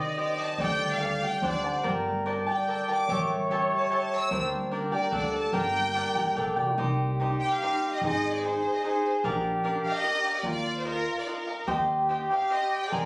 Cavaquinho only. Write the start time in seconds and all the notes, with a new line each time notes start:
Already playing: D5 D#5
0.00 C5
0.17 G4 C5 D#5
0.59 G4 A4 D5 G5
1.00 G4 A4 D5 G5
1.22 G4 D5 G5
1.43 D4 D5 F#5 A5
1.63 D5 F#5 A5
1.83 A#4 D5 G5 A5
2.26 A#4 D5 G5 A5
2.46 D5 G5 A5
2.68 A#4 D5 G5 A5
2.88 D5 G5 A5
3.09 G4 C#5 E5 A5
3.51 G4 C#5 E5 A5
3.90 G4 C#5 E5 A5
4.31 D4 A#4 D5 G5
4.71 D4 A#4 D5 G5
4.92 A#4 D5 G5
5.11 D4 A4 D5 F#5
5.53 D4 A#4 D5 G5
5.93 D4 A#4 D5 G5
6.15 A#4 D5 G5
6.35 D4 A#4 D5 G5
6.56 A#4 D5 G5
6.78 D#4 G4 C5 D#5
7.20 D#4 G4 C5 D#5
7.62 D#4 G4 C5 D#5
8.03 D#4 G#4 C5 D#5
8.44 D#4 G#4 C5 D#5
8.84 D#4 G#4 C5 D#5
9.24 D4 A#4 D5 F5
9.63 D4 A#4 D5 F5
10.03 D4 A#4 D5 F5
10.24 A#4 D5 F5
10.44 F4 A#4 F5
10.84 F4 A#4 D#5 F5
11.26 F4 A#4 D#5 F5
11.47 A#4 D#5 F5
11.67 G4 C5 D#5 G5
12.09 G4 C5 D#5 G5
12.30 C5 D#5 G5
12.51 G4 C5 D#5 G5
12.91 C5 D#5 G#5 A#5